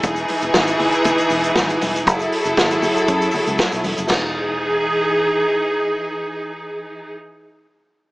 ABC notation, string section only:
X:1
M:4/4
L:1/8
Q:1/4=118
K:E
V:1 name="String section"
[E,DG]8 | [F,EGA]8 | [E,DG]8- | [E,DG]8 |]